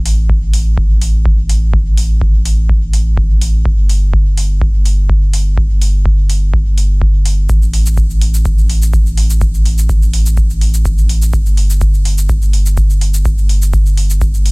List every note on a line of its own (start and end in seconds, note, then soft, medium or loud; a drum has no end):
0.00 3.63 A1 medium
0.06 open hi-hat medium
0.30 kick loud
0.54 open hi-hat medium
0.78 kick loud
1.01 open hi-hat medium
1.25 kick loud
1.49 open hi-hat medium
1.73 kick loud
1.97 open hi-hat medium
2.21 kick loud
2.45 open hi-hat medium
2.69 kick loud
2.93 open hi-hat medium
3.17 kick loud
3.41 open hi-hat medium
3.65 7.47 G1 medium
3.65 kick loud
3.89 open hi-hat medium
4.13 kick loud
4.38 open hi-hat medium
4.62 kick loud
4.85 open hi-hat medium
5.10 kick loud
5.33 open hi-hat medium
5.58 kick loud
5.82 open hi-hat medium
6.06 kick loud
6.30 open hi-hat medium
6.54 kick loud
6.78 open hi-hat medium
7.02 kick loud
7.25 open hi-hat medium
7.49 11.31 A1 medium
7.49 kick loud
7.49 shaker soft
7.62 shaker soft
7.73 open hi-hat medium
7.86 shaker medium
7.97 kick loud
7.97 shaker soft
8.10 shaker soft
8.21 open hi-hat medium
8.34 shaker medium
8.45 kick loud
8.45 shaker soft
8.58 shaker soft
8.70 open hi-hat medium
8.82 shaker medium
8.93 kick loud
8.93 shaker soft
9.06 shaker soft
9.17 open hi-hat medium
9.30 shaker medium
9.41 kick loud
9.41 shaker soft
9.54 shaker soft
9.66 open hi-hat medium
9.78 shaker medium
9.89 kick loud
9.89 shaker soft
10.02 shaker soft
10.13 open hi-hat medium
10.26 shaker medium
10.37 kick loud
10.37 shaker soft
10.50 shaker soft
10.61 open hi-hat medium
10.74 shaker medium
10.85 kick loud
10.85 shaker soft
10.98 shaker soft
11.09 open hi-hat medium
11.22 shaker medium
11.33 14.52 G1 medium
11.33 kick loud
11.33 shaker soft
11.46 shaker soft
11.57 open hi-hat medium
11.70 shaker medium
11.81 kick loud
11.81 shaker soft
11.94 shaker soft
12.05 open hi-hat medium
12.18 shaker medium
12.29 kick loud
12.29 shaker soft
12.42 shaker soft
12.53 open hi-hat medium
12.66 shaker medium
12.77 kick medium
12.77 shaker soft
12.90 shaker soft
13.01 open hi-hat medium
13.14 shaker medium
13.25 kick loud
13.25 shaker medium
13.38 shaker soft
13.49 open hi-hat medium
13.62 shaker medium
13.73 kick loud
13.73 shaker soft
13.86 shaker soft
13.97 open hi-hat medium
14.10 shaker medium
14.21 kick loud
14.21 shaker soft
14.34 shaker soft
14.46 open hi-hat medium